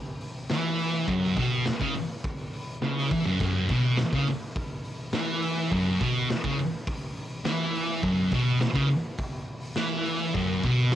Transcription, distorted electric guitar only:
0.51 1.07 E3 loud
1.07 1.36 F#2 loud
1.36 1.65 B2 loud
1.67 muted distorted electric guitar stroke medium
1.81 1.94 C#3 loud
1.95 muted distorted electric guitar stroke medium
2.82 3.10 C#3 loud
3.11 3.25 E3 medium
3.26 3.39 F#2 loud
3.41 3.69 F#2 loud
3.70 3.98 B2 loud
3.99 muted distorted electric guitar stroke medium
4.13 4.26 C#3 loud
4.28 muted distorted electric guitar stroke medium
5.13 5.71 E3 loud
5.72 6.00 F#2 loud
6.00 6.29 B2 medium
6.29 muted distorted electric guitar stroke medium
6.44 6.58 C#3 loud
6.58 muted distorted electric guitar stroke medium
7.45 8.02 E3 loud
8.02 8.31 F#2 loud
8.31 8.60 B2 loud
8.60 muted distorted electric guitar stroke medium
8.74 8.89 C#3 loud
8.88 muted distorted electric guitar stroke medium
9.76 10.34 E3 loud
10.34 10.63 F#2 loud
10.63 10.92 B2 loud

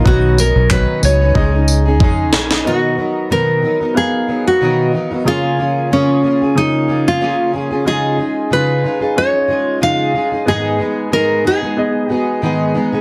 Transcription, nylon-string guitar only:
0.07 0.40 F#4 medium
0.40 0.69 A#4 medium
0.72 1.02 B4 medium
1.05 2.30 C#5 loud
2.67 3.32 F#4 medium
3.32 3.97 A#4 medium
3.97 4.43 G#4 medium
4.47 4.91 F#4 medium
5.28 5.94 F4 medium
5.93 6.57 C#4 medium
6.58 7.09 D#4 medium
7.08 7.51 F4 medium
7.88 8.53 G#4 medium
8.53 9.18 B4 medium
9.18 9.78 C#5 medium
9.83 10.48 F5 medium
10.48 11.13 G#4 medium
11.13 11.46 A#4 medium
11.47 12.12 G#4 medium
12.12 12.39 F#4 medium

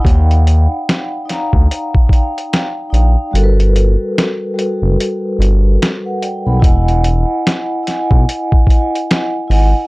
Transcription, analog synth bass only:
0.05 0.67 D#2 loud
1.53 1.68 D2 medium
2.93 3.16 A#1 medium
3.34 3.96 G1 loud
4.82 4.97 F#1 medium
5.39 5.77 G1 loud
6.46 6.61 B1 medium
6.62 7.25 E1 loud
8.11 8.26 B1 loud
9.50 9.73 G#1 medium

